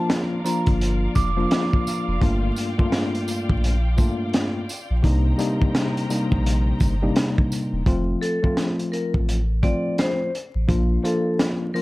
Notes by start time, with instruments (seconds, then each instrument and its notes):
Already playing: tine electric piano F3 A#3 D4 F4, string section F4 A#4 D5 F5
0.10 snare, closed hi-hat
0.45 tine electric piano F3 A#3 D4 F4, vibraphone A#5, closed hi-hat, tambourine
0.66 sub bass G1, kick, closed hi-hat
0.81 closed hi-hat
1.15 sub bass F1, vibraphone D6, kick, closed hi-hat, tambourine
1.37 tine electric piano F3 A#3 D4 F4
1.51 snare, closed hi-hat
1.73 kick
1.87 closed hi-hat, tambourine
2.08 sub bass F1
2.21 sub bass G1, tine electric piano G2 A3 A#3 D4 F4, string section G5, kick, closed hi-hat
2.56 closed hi-hat, tambourine
2.78 tine electric piano G2 A3 A#3 D4 F4, kick
2.92 snare, closed hi-hat
3.15 closed hi-hat
3.28 closed hi-hat, tambourine
3.49 sub bass A#1, kick
3.64 closed hi-hat
3.97 tine electric piano G2 A3 A#3 D4 F4, kick, closed hi-hat, tambourine
4.33 snare, closed hi-hat
4.69 closed hi-hat, tambourine
4.90 sub bass A#1
5.03 sub bass C2, tine electric piano C3 G3 A#3 D4 D#4, string section D#3 C5 G5 A#5, kick, closed hi-hat
5.38 tine electric piano C3 G3 A#3 D4 D#4, closed hi-hat, tambourine
5.62 kick
5.75 snare, closed hi-hat
5.97 closed hi-hat
6.10 tine electric piano C3 G3 A#3 D4 D#4, closed hi-hat, tambourine
6.32 sub bass A#1, kick
6.46 closed hi-hat
6.80 sub bass G1, kick, closed hi-hat, tambourine
7.02 tine electric piano C3 G3 A#3 D4 D#4
7.16 snare, closed hi-hat
7.38 kick
7.52 closed hi-hat, tambourine
7.73 sub bass D#1
7.86 sub bass F1, tine electric piano F3 A3 C4 F4, kick, closed hi-hat
8.21 vibraphone A4, closed hi-hat
8.43 tine electric piano F3 A3 C4 F4, kick
8.57 snare, closed hi-hat
8.79 closed hi-hat
8.92 vibraphone A#4, closed hi-hat
9.14 sub bass A1, kick
9.29 closed hi-hat
9.62 tine electric piano F3 A3 C4 F4, vibraphone D5, kick, closed hi-hat
9.98 vibraphone C5, snare, closed hi-hat
10.35 closed hi-hat
10.55 sub bass A1
10.68 sub bass A#1, tine electric piano F3 A#3 D4 F4, kick, closed hi-hat
11.04 tine electric piano F3 A#3 D4 F4, vibraphone A4, closed hi-hat
11.39 snare, closed hi-hat
11.74 tine electric piano F3 A#3 D4 F4, vibraphone A#4, open hi-hat